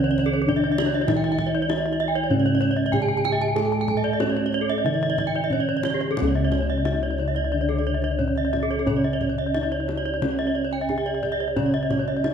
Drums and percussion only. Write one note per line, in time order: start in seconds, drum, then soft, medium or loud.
0.18 kendang slap soft
0.18 kendang low soft
0.49 kendang slap soft
0.49 kendang low soft
0.78 kendang high medium
0.93 kendang slap soft
1.08 kendang high soft
1.08 kendang low medium
1.24 kendang slap soft
1.38 kendang slap soft
1.38 kendang low medium
1.69 kendang slap soft
1.69 kendang high medium
2.00 kendang slap soft
2.16 kendang slap soft
2.62 kendang slap soft
2.62 kendang low soft
2.93 kendang slap soft
2.93 kendang high soft
2.93 kendang low medium
3.25 kendang high soft
3.40 kendang slap soft
3.56 kendang high soft
3.56 kendang low soft
3.72 kendang slap soft
3.88 kendang slap soft
3.88 kendang low medium
4.20 kendang slap soft
4.20 kendang high medium
4.52 kendang slap soft
4.69 kendang slap soft
5.01 kendang slap soft
5.18 kendang slap soft
5.18 kendang low medium
5.34 kendang slap soft
5.50 kendang slap soft
5.50 kendang low soft
5.83 kendang high medium
6.00 kendang slap soft
6.17 kendang high soft
6.17 kendang low medium
6.34 kendang slap soft
6.52 kendang slap soft
6.52 kendang high soft
6.52 kendang low medium
6.85 kendang slap soft
6.85 kendang high medium
7.18 kendang slap soft
7.35 kendang slap soft
7.69 kendang slap soft
8.02 kendang slap soft
8.19 kendang low soft
8.36 kendang slap soft
8.53 kendang high soft
8.53 kendang low soft
8.71 kendang slap soft
8.87 kendang low soft
9.04 kendang slap soft
9.21 kendang slap soft
9.21 kendang low soft
9.54 kendang slap soft
9.54 kendang high soft
9.89 kendang slap soft
9.89 kendang high soft
10.06 kendang slap soft
10.22 kendang high soft
10.39 kendang slap soft
10.71 kendang slap soft
10.89 kendang low soft
11.06 kendang slap soft
11.23 kendang slap soft
11.23 kendang low soft
11.40 kendang slap soft
11.57 kendang high soft
11.57 kendang low soft
11.74 kendang slap soft
11.90 kendang high soft
11.90 kendang low soft
12.24 kendang slap soft
12.24 kendang high soft